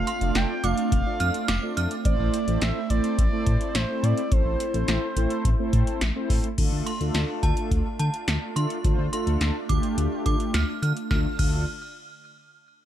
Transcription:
Already playing: analog polysynth A3 D4 F4 A4 F5, analog synth pad A3 C4 F4, analog synth lead F5
0.07 synth bell C6, closed hi-hat
0.21 analog synth bass F1, analog polysynth A3 D4 F4 A4 D5, closed hi-hat
0.35 analog synth bass F1, analog synth lead G5, snare, closed hi-hat
0.64 analog synth bass F1, analog polysynth A3 D4 F4 A4 D5, analog synth lead F5, synth bell D6, closed hi-hat
0.78 closed hi-hat
0.92 analog synth bass F1, analog synth lead F5, kick, closed hi-hat
1.06 analog polysynth A3 D4 F4 A4 D5
1.20 analog synth bass F2, synth bell F6, closed hi-hat
1.34 closed hi-hat
1.48 analog synth bass F1, analog synth lead F5, synth bell D6, snare, closed hi-hat
1.63 analog polysynth A3 D4 F4 A4 D5
1.77 analog synth bass F2, synth bell F6, closed hi-hat
1.91 closed hi-hat
2.05 analog synth bass A1, analog polysynth A3 C4 E4 A4 C5, analog synth pad A3 E4, analog synth lead D5, kick, closed hi-hat
2.19 analog synth bass A1
2.34 closed hi-hat
2.48 analog synth bass A1, analog polysynth A3 C4 E4 A4 C5, closed hi-hat
2.62 analog synth bass A1, analog synth lead E5, snare, closed hi-hat
2.90 analog synth bass A1, analog polysynth A3 C4 E4 A4 C5, analog synth lead D5, closed hi-hat
3.04 closed hi-hat
3.18 analog synth bass A1, analog synth lead D5, kick, closed hi-hat
3.33 analog polysynth A3 C4 E4 A4 C5
3.46 analog synth bass A2, kick, closed hi-hat
3.61 closed hi-hat
3.75 analog synth bass A1, analog synth lead C5, snare, closed hi-hat
3.89 analog polysynth A3 C4 E4 A4 C5
4.03 analog synth bass A2, analog synth lead D5, closed hi-hat
4.18 closed hi-hat
4.32 analog synth bass A1, analog polysynth A3 C4 E4 A4 C5, analog synth lead C5, kick, closed hi-hat
4.46 analog synth bass A1
4.60 closed hi-hat
4.74 analog synth bass A1, analog polysynth A3 C4 E4 A4 C5, closed hi-hat
4.88 analog synth bass A1, snare, closed hi-hat
5.16 analog synth bass A1, analog polysynth A3 C4 E4 A4 C5, closed hi-hat
5.30 closed hi-hat
5.45 analog synth bass A1, kick, closed hi-hat
5.59 analog polysynth A3 C4 E4 A4 C5
5.73 analog synth bass A2, kick, closed hi-hat
5.87 closed hi-hat
6.01 analog synth bass A1, snare, closed hi-hat
6.16 analog polysynth A3 C4 E4 A4 C5
6.30 analog synth bass A2, kick, open hi-hat
6.44 closed hi-hat
6.58 analog synth bass D2, analog polysynth A3 D4 F4 A4, analog synth pad A3 D4 F4, kick, closed hi-hat, crash
6.72 analog synth bass D2
6.86 synth bell C6, closed hi-hat
7.00 analog synth bass D2, analog polysynth A3 D4 F4 A4, closed hi-hat
7.14 analog synth bass D2, snare, closed hi-hat
7.43 analog synth bass D2, synth bell A5, kick, closed hi-hat
7.57 closed hi-hat
7.71 analog synth bass D2, kick, closed hi-hat
7.99 analog synth bass D3, synth bell A5, closed hi-hat
8.14 closed hi-hat
8.28 analog synth bass D2, snare, closed hi-hat
8.56 analog synth bass D3, analog polysynth A3 D4 F4 A4, synth bell C6, closed hi-hat
8.70 closed hi-hat
8.84 analog synth bass D2, analog polysynth A3 D4 F4 C5, kick, closed hi-hat
8.99 analog synth bass D2
9.13 analog polysynth A3 D4 F4 A4, synth bell C6, closed hi-hat
9.27 analog synth bass D2, closed hi-hat
9.41 analog synth bass D2, snare, closed hi-hat
9.69 analog synth bass D2, analog polysynth A3 D4 F4 G4, synth bell D6, kick, closed hi-hat
9.83 closed hi-hat
9.98 analog synth bass D2, closed hi-hat
10.26 analog synth bass D3, synth bell D6, kick, closed hi-hat
10.40 closed hi-hat
10.54 analog synth bass D2, synth bell F6, snare, closed hi-hat
10.82 analog synth bass D3, synth bell F6, closed hi-hat
10.97 closed hi-hat
11.11 analog synth bass D2, analog synth pad D3 D4 F4 A4 A5, analog polysynth A3 D4 F4 A4, synth bell F6, kick, snare
11.39 analog synth bass D2, analog polysynth A3 D4 F4 A4, synth bell F6, kick, crash

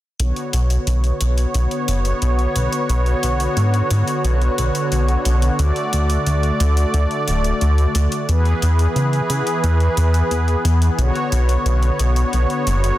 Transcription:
0.19 analog synth bass B1, analog synth pad D3 B3 F#4 C#5, closed hi-hat
0.36 closed hi-hat
0.53 analog synth bass B1, closed hi-hat
0.70 closed hi-hat
0.87 analog synth bass B1, closed hi-hat
1.04 closed hi-hat
1.21 analog synth bass B1, closed hi-hat
1.38 closed hi-hat
1.54 analog synth bass B1, closed hi-hat
1.71 closed hi-hat
1.88 analog synth bass F#1, closed hi-hat
2.05 closed hi-hat
2.22 analog synth bass B1, closed hi-hat
2.39 closed hi-hat
2.56 analog synth bass B1, closed hi-hat
2.73 closed hi-hat
2.89 analog synth bass B1, closed hi-hat
3.06 closed hi-hat
3.23 analog synth bass B1, closed hi-hat
3.40 closed hi-hat
3.57 analog synth bass G#2, closed hi-hat
3.74 closed hi-hat
3.90 analog synth bass G#2, closed hi-hat
4.08 closed hi-hat
4.24 analog synth bass B1, closed hi-hat
4.41 closed hi-hat
4.58 analog synth bass B1, closed hi-hat
4.75 closed hi-hat
4.92 analog synth bass B1, closed hi-hat
5.09 closed hi-hat
5.25 analog synth bass B1, closed hi-hat
5.42 closed hi-hat
5.59 analog synth bass D2, analog synth pad A3 D5, closed hi-hat
5.76 closed hi-hat
5.93 analog synth bass D2, closed hi-hat
6.10 closed hi-hat
6.26 analog synth bass D2, closed hi-hat
6.43 closed hi-hat
6.60 analog synth bass D2, closed hi-hat
6.77 closed hi-hat
6.94 analog synth bass D2, closed hi-hat
7.11 closed hi-hat
7.28 analog synth bass D1, closed hi-hat
7.44 closed hi-hat
7.61 analog synth bass D2, closed hi-hat
7.78 closed hi-hat
7.95 analog synth bass D2, closed hi-hat
8.12 closed hi-hat
8.29 analog synth bass E2, analog synth pad E3 B3 G#4 B4, closed hi-hat
8.46 closed hi-hat
8.62 analog synth bass E2, closed hi-hat
8.79 closed hi-hat
8.96 analog synth bass C#3, closed hi-hat
9.13 closed hi-hat
9.30 analog synth bass C#3, closed hi-hat
9.47 closed hi-hat
9.63 analog synth bass E2, closed hi-hat
9.80 closed hi-hat
9.97 analog synth bass E2, closed hi-hat
10.14 closed hi-hat
10.31 analog synth bass E2, closed hi-hat
10.48 closed hi-hat
10.65 analog synth bass E2, closed hi-hat
10.82 closed hi-hat
10.98 analog synth bass B1, analog synth pad D3 F#4 C#5, closed hi-hat
11.15 closed hi-hat
11.32 analog synth bass B1, closed hi-hat
11.49 closed hi-hat
11.66 analog synth bass B1, closed hi-hat
11.83 closed hi-hat
11.99 analog synth bass B1, closed hi-hat
12.16 closed hi-hat
12.33 analog synth bass B1, closed hi-hat
12.50 closed hi-hat
12.67 analog synth bass F#1, closed hi-hat
12.84 closed hi-hat

